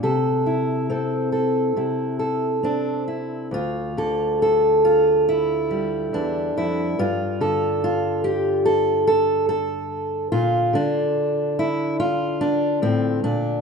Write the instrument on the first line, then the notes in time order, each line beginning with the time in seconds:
steel-string acoustic guitar
0.03 C3 A4
0.46 E4
0.90 C4 A4
1.32 A4
1.76 C3 E4
2.19 A4
2.63 C4 D4
3.08 E4
3.51 D2 F4
3.97 D3 A4
4.42 A4
4.85 F4
5.29 E4
5.71 G3
6.13 E2 D4
6.57 F2 E4
6.99 G2 F4
7.41 D3 A4
7.84 F4
8.24 G4
8.65 A4
9.07 A4
9.49 A4
10.32 A#2 F4
10.73 D3 D4
11.59 E4
12.00 F4
12.41 D4
12.82 A2 C4
13.23 A#2 D4